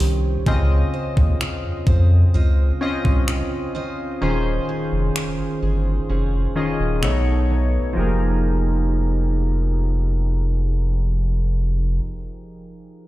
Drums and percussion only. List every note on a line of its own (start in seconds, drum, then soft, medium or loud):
0.00 open hi-hat medium
0.46 kick loud
1.17 kick medium
1.41 finger snap loud
1.87 kick loud
3.05 kick medium
3.28 finger snap loud
5.16 finger snap loud
7.03 finger snap loud